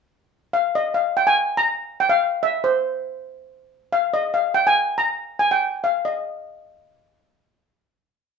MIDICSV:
0, 0, Header, 1, 2, 480
1, 0, Start_track
1, 0, Key_signature, -3, "major"
1, 0, Tempo, 426743
1, 818, Time_signature, 4, 2, 24, 8
1, 9436, End_track
2, 0, Start_track
2, 0, Title_t, "Steel pan"
2, 0, Program_c, 0, 114
2, 601, Note_on_c, 0, 77, 79
2, 836, Note_off_c, 0, 77, 0
2, 848, Note_on_c, 0, 75, 80
2, 1061, Note_on_c, 0, 77, 73
2, 1079, Note_off_c, 0, 75, 0
2, 1306, Note_off_c, 0, 77, 0
2, 1313, Note_on_c, 0, 79, 85
2, 1367, Note_off_c, 0, 79, 0
2, 1426, Note_on_c, 0, 80, 86
2, 1752, Note_off_c, 0, 80, 0
2, 1770, Note_on_c, 0, 82, 98
2, 2251, Note_on_c, 0, 79, 88
2, 2267, Note_off_c, 0, 82, 0
2, 2356, Note_on_c, 0, 77, 84
2, 2385, Note_off_c, 0, 79, 0
2, 2731, Note_on_c, 0, 76, 84
2, 2732, Note_off_c, 0, 77, 0
2, 2968, Note_on_c, 0, 72, 66
2, 2980, Note_off_c, 0, 76, 0
2, 3418, Note_off_c, 0, 72, 0
2, 4415, Note_on_c, 0, 77, 78
2, 4651, Note_on_c, 0, 75, 84
2, 4663, Note_off_c, 0, 77, 0
2, 4880, Note_on_c, 0, 77, 72
2, 4901, Note_off_c, 0, 75, 0
2, 5111, Note_off_c, 0, 77, 0
2, 5112, Note_on_c, 0, 79, 89
2, 5242, Note_off_c, 0, 79, 0
2, 5250, Note_on_c, 0, 80, 86
2, 5585, Note_off_c, 0, 80, 0
2, 5600, Note_on_c, 0, 82, 92
2, 6067, Note_on_c, 0, 80, 90
2, 6104, Note_off_c, 0, 82, 0
2, 6201, Note_on_c, 0, 79, 82
2, 6215, Note_off_c, 0, 80, 0
2, 6566, Note_on_c, 0, 77, 80
2, 6577, Note_off_c, 0, 79, 0
2, 6677, Note_off_c, 0, 77, 0
2, 6806, Note_on_c, 0, 75, 64
2, 7258, Note_off_c, 0, 75, 0
2, 9436, End_track
0, 0, End_of_file